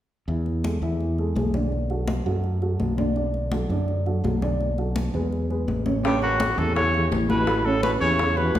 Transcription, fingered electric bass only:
0.28 0.78 E2 medium
0.82 1.32 E2 medium
1.35 2.20 B1 medium
2.26 2.76 F#2 medium
2.80 3.64 B1 medium
3.69 4.20 F#2 medium
4.24 5.08 B1 medium
5.14 5.64 E2 medium
5.68 6.52 A1 medium
6.58 7.08 E2 medium
7.11 7.96 A1 medium
8.01 8.52 E2 medium
8.55 8.59 D2 medium

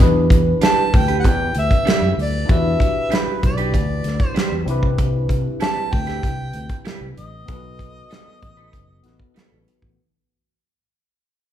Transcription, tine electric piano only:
0.00 2.43 D4 medium
0.00 2.44 E4 medium
0.00 2.45 G4 medium
0.00 2.46 B4 medium
2.46 4.62 D4 medium
2.46 4.62 E4 medium
2.46 4.63 F#4 medium
2.50 4.64 G4 medium
2.50 4.64 B4 medium
4.65 7.12 C4 medium
4.65 7.13 D4 medium
4.65 7.13 E4 medium
4.70 7.14 G4 medium
4.70 7.15 B4 medium
7.46 9.00 B3 medium
7.46 9.01 D#4 medium
7.46 9.01 F#4 medium
7.50 9.02 A4 medium
7.50 9.03 B4 medium
9.03 9.97 B3 medium
9.03 9.98 D#4 soft
9.03 9.98 F#4 soft
9.03 9.99 A4 soft
9.03 9.99 B4 medium

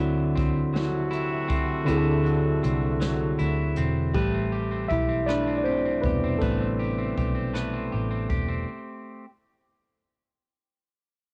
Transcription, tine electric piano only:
0.00 1.83 D3 medium
0.00 1.84 C4 medium
0.00 1.85 E4 medium
0.00 1.89 F#4 medium
1.85 4.09 D3 medium
1.85 4.10 C4 medium
1.85 4.11 E4 medium
1.91 1.96 G#4 medium
1.97 4.15 A4 medium
4.14 6.37 E3 soft
4.14 4.87 G3 medium
4.14 6.38 A3 medium
4.14 4.92 G4 medium
4.89 5.26 E4 medium
4.89 5.28 E5 medium
5.26 5.57 D4 medium
5.26 5.57 D5 medium
5.58 5.65 D5 medium
5.64 6.02 C4 medium
5.64 6.03 C5 medium
6.01 6.38 C3 soft
6.01 6.38 G3 soft
6.01 6.39 B3 medium
6.01 6.41 B4 medium
6.38 7.50 G3 soft
6.38 7.22 A3 soft
6.38 7.50 C4 soft
6.38 7.20 A4 medium
6.38 7.51 B4 soft

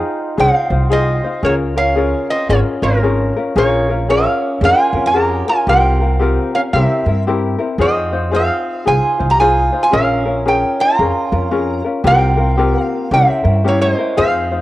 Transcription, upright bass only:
0.38 0.49 C2 medium
0.70 1.18 C2 medium
1.43 2.12 C#2 medium
2.49 2.60 G#1 medium
2.82 3.30 G#1 medium
3.56 4.25 A#1 medium
4.61 4.72 F2 medium
4.93 5.41 F2 medium
5.67 6.36 C2 medium
6.73 6.85 C2 medium
7.06 7.54 G2 medium
7.78 8.48 F2 medium
8.87 8.98 C2 medium
9.20 9.68 C2 medium
9.93 10.62 A#1 medium
10.99 11.10 F2 medium
11.32 11.80 F2 medium
12.04 12.74 C2 medium
13.11 13.22 C2 medium
13.45 13.92 G2 medium
14.18 14.61 F2 medium

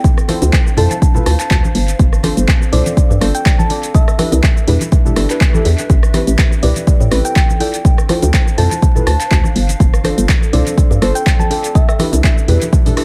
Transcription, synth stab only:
0.28 0.55 E4 medium
0.28 0.55 F4 medium
0.28 0.55 A4 medium
0.28 0.55 C5 medium
0.77 0.94 E4 medium
0.77 0.95 F4 medium
0.77 0.95 A4 medium
0.77 0.95 C5 medium
1.15 1.31 E4 medium
1.15 1.31 F4 medium
1.15 1.31 A4 medium
1.15 1.31 B4 medium
2.23 2.50 D4 medium
2.23 2.50 F4 medium
2.23 2.50 A4 medium
2.23 2.51 C5 medium
2.72 3.18 D4 medium
2.72 3.19 F4 medium
2.72 3.19 A4 medium
2.72 3.19 C5 loud
3.21 3.67 D4 loud
3.21 3.67 F4 medium
3.21 3.68 A4 medium
3.21 3.68 C5 loud
3.69 3.87 D4 medium
3.69 3.87 F4 medium
3.69 3.87 A4 medium
3.69 3.88 D5 medium
4.18 4.45 D4 medium
4.18 4.45 E4 medium
4.18 4.46 G4 medium
4.18 4.46 B4 loud
4.67 4.85 D4 medium
4.67 4.85 E4 medium
4.67 4.85 G4 medium
4.67 4.85 B4 medium
5.05 5.14 D4 medium
5.05 5.14 E4 medium
5.05 5.14 G4 medium
5.05 5.15 A4 medium
5.16 5.26 D4 loud
5.16 5.27 E4 medium
5.16 5.27 G4 medium
5.16 5.27 A4 loud
5.29 5.50 D4 medium
5.29 5.50 E4 medium
5.29 5.50 G4 medium
5.29 5.51 B4 loud
5.54 5.70 D4 loud
5.54 5.70 E4 medium
5.54 5.70 G4 medium
5.54 5.70 A4 loud
6.14 6.40 C4 medium
6.14 6.41 E4 medium
6.14 6.41 G4 medium
6.14 6.41 B4 medium
6.62 7.09 C4 medium
6.62 7.09 E4 medium
6.62 7.09 G4 medium
6.62 7.09 B4 loud
7.11 7.57 C4 loud
7.11 7.58 E4 medium
7.11 7.58 G4 medium
7.11 7.58 B4 loud
7.60 7.77 E4 medium
7.60 7.78 F4 medium
7.60 7.78 A4 medium
7.60 7.78 D5 medium
8.09 8.35 E4 medium
8.09 8.36 F4 medium
8.09 8.36 A4 medium
8.09 8.36 C5 medium
8.57 8.75 E4 medium
8.57 8.75 F4 medium
8.57 8.75 A4 medium
8.57 8.76 C5 medium
8.95 9.11 E4 medium
8.95 9.11 F4 medium
8.95 9.12 A4 medium
8.95 9.12 B4 medium
10.04 10.31 D4 medium
10.04 10.31 F4 medium
10.04 10.31 A4 medium
10.04 10.31 C5 medium
10.53 10.99 D4 medium
10.53 10.99 F4 medium
10.53 10.99 A4 medium
10.53 11.00 C5 loud
11.01 11.48 D4 loud
11.01 11.48 F4 medium
11.01 11.48 A4 medium
11.01 11.48 C5 loud
11.50 11.68 D4 medium
11.50 11.68 F4 medium
11.50 11.68 A4 medium
11.50 11.68 D5 medium
11.99 12.26 D4 medium
11.99 12.26 E4 medium
11.99 12.26 G4 medium
11.99 12.26 B4 medium
12.48 12.65 D4 medium
12.48 12.65 E4 medium
12.48 12.66 G4 medium
12.48 12.66 B4 loud
12.85 12.95 D4 medium
12.85 12.95 E4 medium
12.85 12.95 G4 medium
12.85 12.95 A4 medium
12.97 13.04 D4 loud
12.97 13.04 E4 medium
12.97 13.04 G4 medium
12.97 13.04 A4 loud

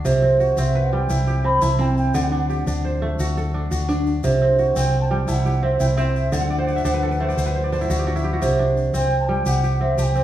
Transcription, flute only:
0.58 0.85 E5 medium
0.83 0.93 F#5 medium
0.92 1.47 G5 medium
1.45 1.64 B5 medium
1.63 1.82 A5 medium
1.80 1.97 G5 medium
1.98 2.16 G5 medium
2.14 2.67 F#5 medium
4.75 5.00 G5 loud
5.01 5.05 A5 medium
5.10 5.16 G5 medium
5.28 5.33 A5 medium
5.32 5.64 F#5 medium
5.62 5.80 E5 medium
5.80 5.86 G5 medium
5.96 6.34 E5 medium
6.32 8.07 F#5 medium
8.95 9.19 G5 medium
9.20 9.28 A5 medium
9.28 9.45 G5 medium
9.47 9.79 F#5 loud
9.81 9.97 E5 medium
9.98 10.03 A5 medium
10.02 10.24 G5 medium

